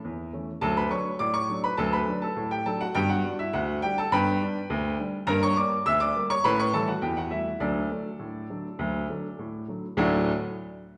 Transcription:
0.04 0.29 E2 medium
0.33 0.49 E3 soft
0.33 0.50 A3 medium
0.33 0.50 C#4 soft
0.61 0.87 D2 loud
0.61 0.80 F#3 medium
0.61 0.76 A4 medium
0.61 0.77 A5 loud
0.77 0.91 B4 medium
0.77 0.92 B5 loud
0.91 1.07 F#3 medium
0.91 1.08 A3 medium
0.91 1.08 D4 medium
0.91 1.19 C#5 medium
0.91 1.15 C#6 loud
1.19 1.45 A2 medium
1.19 1.34 D5 medium
1.19 1.35 D6 loud
1.34 1.63 C#5 medium
1.34 1.62 C#6 loud
1.49 1.66 F#3 medium
1.49 1.66 A3 soft
1.49 1.66 D4 medium
1.64 1.78 B4 medium
1.64 1.79 B5 loud
1.77 2.03 D2 loud
1.77 1.96 F#3 medium
1.77 1.93 A4 loud
1.77 1.93 A5 loud
1.93 2.21 B4 medium
1.93 2.17 B5 loud
2.08 2.24 F#3 medium
2.08 2.24 A3 medium
2.08 2.24 D4 medium
2.22 2.50 A4 medium
2.22 2.50 A5 medium
2.36 2.62 A2 medium
2.51 2.66 G4 medium
2.51 2.66 G5 loud
2.66 2.82 F#3 medium
2.66 2.82 A3 medium
2.66 2.83 D4 medium
2.66 2.80 A4 medium
2.66 2.81 A5 loud
2.81 2.95 F#4 medium
2.81 2.95 F#5 loud
2.95 3.20 G2 loud
2.95 3.12 B3 medium
2.95 3.09 G4 loud
2.95 3.10 G5 loud
3.09 3.38 F#4 medium
3.09 3.33 F#5 loud
3.24 3.40 G3 medium
3.24 3.41 D4 medium
3.39 3.53 E4 medium
3.39 3.54 E5 loud
3.53 3.78 D2 loud
3.53 3.81 F#4 medium
3.53 3.81 F#5 loud
3.82 3.99 G3 medium
3.82 3.99 D4 medium
3.82 3.97 G4 medium
3.82 3.97 G5 loud
3.98 4.12 A4 medium
3.98 4.12 A5 loud
4.12 4.37 G2 loud
4.12 4.30 B3 medium
4.12 4.96 B4 loud
4.12 4.96 G5 loud
4.12 4.95 B5 loud
4.41 4.57 G3 medium
4.41 4.57 D4 medium
4.70 4.95 D2 loud
4.99 5.15 G3 medium
4.99 5.15 D4 medium
5.27 5.52 G2 loud
5.27 5.45 A#3 loud
5.27 5.42 A#4 loud
5.27 5.42 A#5 loud
5.43 5.57 C#5 medium
5.43 5.57 C#6 loud
5.56 5.73 G3 medium
5.56 5.73 A#3 medium
5.56 5.84 D5 medium
5.56 5.84 D6 loud
5.86 6.11 D2 loud
5.86 6.00 E5 loud
5.86 6.00 E6 loud
6.00 6.28 D5 medium
6.00 6.24 D6 loud
6.16 6.31 G3 medium
6.16 6.32 A#3 medium
6.30 6.44 C#5 loud
6.30 6.44 C#6 loud
6.44 6.69 A2 loud
6.44 6.62 C#4 medium
6.44 6.58 B4 loud
6.44 6.59 B5 loud
6.60 6.73 C#5 medium
6.60 6.74 C#6 loud
6.73 6.89 E3 medium
6.73 6.90 G3 medium
6.73 6.90 A3 medium
6.73 6.87 A4 medium
6.73 6.88 A5 loud
6.88 7.02 F#4 medium
6.88 7.02 F#5 loud
7.02 7.27 E2 medium
7.02 7.16 G4 medium
7.02 7.17 G5 medium
7.17 7.31 F#4 medium
7.17 7.32 F#5 loud
7.31 7.47 E3 soft
7.31 7.48 G3 soft
7.31 7.48 A3 medium
7.31 7.59 E4 medium
7.31 7.59 E5 medium
7.60 7.86 D2 medium
7.60 7.78 F#3 medium
7.60 9.64 D4 medium
7.60 9.64 A4 medium
7.60 9.63 D5 loud
7.90 8.06 D3 soft
7.90 8.07 F#3 soft
7.90 8.07 A3 medium
8.19 8.45 A2 medium
8.50 8.66 D3 soft
8.50 8.66 F#3 soft
8.50 8.66 A3 soft
8.79 9.04 D2 loud
8.79 8.97 F#3 medium
9.09 9.25 D3 soft
9.09 9.25 F#3 soft
9.09 9.26 A3 medium
9.39 9.64 A2 medium
9.68 9.84 D3 soft
9.68 9.85 F#3 soft
9.68 9.85 A3 soft
9.97 10.30 D2 loud
9.97 10.30 A2 loud
9.97 10.30 F#3 loud
9.97 10.30 A3 loud
9.97 10.30 D4 loud
9.97 10.30 F#4 loud

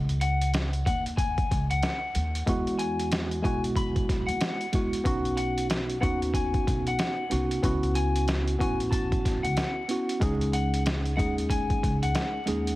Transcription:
0.00 0.82 C#2 loud
0.09 closed hi-hat soft
0.21 0.50 F#5 medium
0.21 closed hi-hat medium
0.41 closed hi-hat medium
0.54 snare loud
0.54 closed hi-hat medium
0.73 closed hi-hat soft
0.86 1.44 D#2 medium
0.86 1.04 F#5 medium
0.86 kick loud
0.86 closed hi-hat medium
1.06 closed hi-hat medium
1.17 1.66 G#5 medium
1.17 kick medium
1.17 closed hi-hat loud
1.38 kick loud
1.38 closed hi-hat soft
1.51 1.80 C#2 loud
1.51 kick loud
1.51 closed hi-hat medium
1.70 2.43 F#5 medium
1.70 closed hi-hat medium
1.83 snare loud
1.83 closed hi-hat medium
2.15 2.44 D#2 medium
2.15 closed hi-hat medium
2.35 closed hi-hat medium
2.46 3.40 E2 loud
2.46 3.37 G#3 medium
2.46 3.38 B3 medium
2.46 3.38 E4 medium
2.46 3.39 F#4 loud
2.46 kick loud
2.46 closed hi-hat loud
2.67 closed hi-hat soft
2.79 3.08 G#5 medium
2.79 closed hi-hat medium
2.99 closed hi-hat medium
3.12 snare loud
3.12 closed hi-hat medium
3.31 closed hi-hat soft
3.42 4.24 B1 medium
3.42 4.64 G#3 medium
3.42 4.64 B3 medium
3.42 4.65 E4 medium
3.42 4.65 F#4 loud
3.42 3.61 G#5 medium
3.42 kick loud
3.42 closed hi-hat medium
3.64 closed hi-hat soft
3.76 4.25 B5 medium
3.76 kick medium
3.76 closed hi-hat loud
3.96 kick loud
3.96 closed hi-hat soft
4.09 kick loud
4.09 snare soft
4.09 closed hi-hat medium
4.27 4.39 D#2 medium
4.27 5.00 F#5 medium
4.27 closed hi-hat medium
4.41 snare loud
4.41 closed hi-hat medium
4.61 closed hi-hat soft
4.73 5.03 G#3 medium
4.73 5.03 B3 medium
4.73 5.04 E4 medium
4.73 5.04 F#4 medium
4.73 kick medium
4.73 closed hi-hat medium
4.93 closed hi-hat medium
5.04 5.98 B1 loud
5.04 5.95 B3 medium
5.04 5.96 C#4 medium
5.04 5.96 D#4 medium
5.04 5.97 F#4 loud
5.04 kick loud
5.04 closed hi-hat loud
5.25 closed hi-hat soft
5.37 5.66 F#5 medium
5.37 closed hi-hat medium
5.58 closed hi-hat medium
5.70 snare loud
5.70 closed hi-hat medium
5.90 closed hi-hat soft
6.01 6.60 D#2 medium
6.01 7.22 B3 loud
6.01 7.23 C#4 medium
6.01 7.23 D#4 medium
6.01 7.24 F#4 loud
6.01 6.19 F#5 medium
6.01 kick loud
6.01 closed hi-hat medium
6.22 closed hi-hat soft
6.34 6.83 G#5 medium
6.34 kick medium
6.34 closed hi-hat loud
6.54 kick loud
6.54 closed hi-hat soft
6.67 6.96 B1 loud
6.67 kick loud
6.67 closed hi-hat medium
6.87 7.60 F#5 medium
6.87 closed hi-hat medium
6.99 snare loud
6.99 closed hi-hat medium
7.30 7.60 C2 medium
7.30 7.60 B3 medium
7.30 7.61 C#4 medium
7.30 7.61 D#4 medium
7.30 7.62 F#4 medium
7.30 closed hi-hat medium
7.51 closed hi-hat soft
7.62 8.56 C#2 loud
7.62 8.53 B3 medium
7.62 8.54 C#4 medium
7.62 8.54 E4 medium
7.62 8.55 F#4 loud
7.62 kick loud
7.62 closed hi-hat loud
7.83 closed hi-hat soft
7.95 8.24 G#5 medium
7.95 closed hi-hat medium
8.16 closed hi-hat medium
8.28 snare loud
8.28 closed hi-hat medium
8.48 closed hi-hat soft
8.58 9.40 A1 medium
8.58 9.80 B3 medium
8.58 9.81 C#4 medium
8.58 9.81 E4 medium
8.58 9.81 F#4 loud
8.58 8.78 G#5 medium
8.58 kick loud
8.58 closed hi-hat medium
8.80 closed hi-hat medium
8.91 9.40 A5 medium
8.91 kick medium
8.91 closed hi-hat loud
9.12 kick loud
9.12 closed hi-hat soft
9.25 kick loud
9.25 snare soft
9.25 closed hi-hat medium
9.43 9.56 C#2 medium
9.43 10.17 F#5 medium
9.43 closed hi-hat medium
9.57 snare loud
9.57 closed hi-hat medium
9.88 10.19 B3 medium
9.88 10.19 C#4 medium
9.88 10.20 E4 medium
9.88 10.20 F#4 medium
9.88 closed hi-hat medium
10.09 closed hi-hat soft
10.20 11.14 C#2 loud
10.20 11.11 G#3 medium
10.20 11.12 C#4 medium
10.20 11.12 D#4 medium
10.20 11.13 G#4 loud
10.20 kick loud
10.20 closed hi-hat loud
10.41 closed hi-hat soft
10.53 10.82 F#5 medium
10.53 closed hi-hat medium
10.74 closed hi-hat medium
10.86 snare loud
10.86 closed hi-hat medium
11.06 closed hi-hat soft
11.17 11.76 D#2 medium
11.17 12.38 G#3 medium
11.17 12.39 C#4 medium
11.17 12.39 D#4 medium
11.17 12.40 G#4 loud
11.17 11.35 F#5 medium
11.17 kick loud
11.17 closed hi-hat medium
11.38 closed hi-hat soft
11.50 11.99 G#5 medium
11.50 kick medium
11.50 closed hi-hat loud
11.70 kick loud
11.70 closed hi-hat soft
11.83 12.12 C#2 loud
11.83 kick loud
11.83 closed hi-hat medium
12.03 12.76 F#5 medium
12.03 closed hi-hat medium
12.15 snare loud
12.15 closed hi-hat medium
12.46 12.76 D#2 medium
12.46 12.76 G#3 medium
12.46 12.76 C#4 medium
12.46 12.76 D#4 medium
12.46 12.76 G#4 medium
12.46 closed hi-hat medium
12.67 closed hi-hat soft

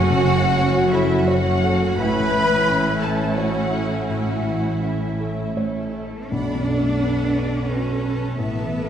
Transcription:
0.00 2.00 F#1 loud
0.00 1.96 F#2 medium
0.00 2.00 F#2 loud
0.00 2.03 F#2 medium
0.00 1.61 F#3 medium
0.00 0.11 A3 medium
0.00 0.24 A3 medium
0.00 0.41 C#4 medium
0.00 1.95 C#4 medium
0.00 1.96 C#4 loud
0.00 0.57 F#4 medium
0.00 0.92 F#4 loud
0.00 0.93 F#4 loud
0.00 1.95 F#4 medium
0.00 1.96 F#4 loud
0.00 0.91 C#5 medium
0.00 0.91 F#5 loud
0.00 0.93 F#5 loud
0.00 1.09 F#5 medium
0.08 2.03 C#3 medium
0.24 0.79 C#3 medium
0.24 1.80 A3 medium
0.42 2.50 C#4 medium
0.58 1.13 C#4 medium
0.58 1.62 F#4 medium
0.75 1.44 A4 medium
0.91 1.27 E4 medium
0.91 1.26 E4 medium
0.91 1.49 A4 medium
0.91 1.26 C#5 medium
0.91 1.27 E5 loud
0.91 1.29 E5 medium
1.10 2.03 F#5 medium
1.26 1.81 F#4 medium
1.26 2.00 F#4 medium
1.26 3.01 C#5 medium
1.26 1.85 C#5 medium
1.26 1.70 F#5 medium
1.26 2.00 F#5 loud
1.45 2.85 A4 medium
1.63 2.02 F#4 medium
1.63 2.00 A4 medium
1.81 2.33 A3 medium
1.98 6.06 A1 medium
1.98 5.52 A2 medium
1.98 4.07 A2 medium
1.98 4.05 A2 medium
1.98 5.92 C#4 medium
1.98 6.06 C#4 medium
1.98 5.96 E4 medium
1.98 6.06 E4 medium
1.98 3.02 B4 loud
1.98 3.04 B5 loud
1.98 3.00 B5 loud
2.18 4.26 E3 medium
2.35 2.89 E3 soft
2.35 3.90 A3 medium
2.52 4.62 C#4 medium
2.69 3.23 C#4 medium
2.69 3.71 E4 medium
2.86 3.53 A4 medium
3.00 3.38 A4 medium
3.00 3.37 A4 medium
3.00 3.59 A4 medium
3.00 3.35 C#5 medium
3.00 3.37 A5 medium
3.20 5.37 E5 medium
3.36 3.83 F#4 medium
3.36 4.07 F#4 medium
3.36 5.18 C#5 medium
3.36 3.95 C#5 medium
3.36 3.83 F#5 medium
3.36 4.08 F#5 loud
3.55 4.99 A4 soft
3.72 4.81 E4 medium
3.72 4.31 A4 soft
3.91 4.44 A3 soft
4.08 6.34 A2 medium
4.08 6.28 A2 medium
4.08 4.84 F#4 medium
4.08 4.81 F#4 medium
4.08 4.85 F#5 medium
4.08 4.81 F#5 medium
4.27 6.34 E3 soft
4.45 5.05 E3 soft
4.45 6.11 A3 soft
4.63 6.34 C#4 soft
4.82 5.42 C#4 soft
4.82 5.56 E4 soft
4.82 5.93 E4 soft
4.82 5.57 E4 soft
4.82 5.56 E5 medium
4.82 5.57 E5 soft
5.00 5.74 A4 soft
5.19 5.79 A4 soft
5.19 5.55 C#5 soft
5.38 6.34 E5 soft
5.55 6.27 A3 medium
5.55 6.27 A4 medium
5.55 6.34 C#5 soft
5.55 6.17 C#5 soft
5.75 7.16 A4 soft
5.94 6.34 E4 soft
5.94 6.31 A4 soft
6.12 6.66 A3 soft
6.30 8.33 B1 medium
6.30 8.34 B1 medium
6.30 8.39 B2 medium
6.30 7.67 D4 medium
6.30 7.64 A4 medium
6.30 7.67 D5 medium
6.30 6.96 D5 medium
6.30 6.65 F#5 medium
6.30 6.64 B5 medium
6.49 8.18 F#3 soft
6.56 6.92 F#2 soft
6.66 8.69 A3 soft
6.66 7.68 F#5 medium
6.78 7.14 A3 soft
6.83 8.02 B3 soft
7.00 7.37 B3 soft
7.00 7.34 B4 soft
7.00 7.34 B4 medium
7.17 7.84 A4 soft
7.24 7.60 B4 soft
7.35 7.66 B4 medium
7.35 7.69 D5 medium
7.47 7.82 A4 soft
7.51 8.89 B5 soft
7.67 8.37 C#4 medium
7.67 8.03 F#4 medium
7.67 8.89 B4 soft
7.67 8.38 B4 soft
7.67 8.06 B4 soft
7.67 8.37 C#5 medium
7.67 8.36 A5 soft
7.86 8.89 A4 soft
7.92 8.29 A4 soft
8.03 8.89 B3 soft
8.03 8.36 A4 medium
8.16 8.40 F#3 soft
8.16 8.38 B4 soft
8.36 8.89 A1 medium
8.36 8.89 A2 medium
8.36 8.89 B3 medium
8.36 8.89 A4 medium
8.36 8.89 B4 medium
8.36 8.70 E5 medium
8.36 8.89 A5 medium
8.53 8.89 E3 soft
8.61 8.89 E3 soft
8.70 8.89 A3 soft
8.70 8.89 E5 medium
8.84 8.89 A3 soft

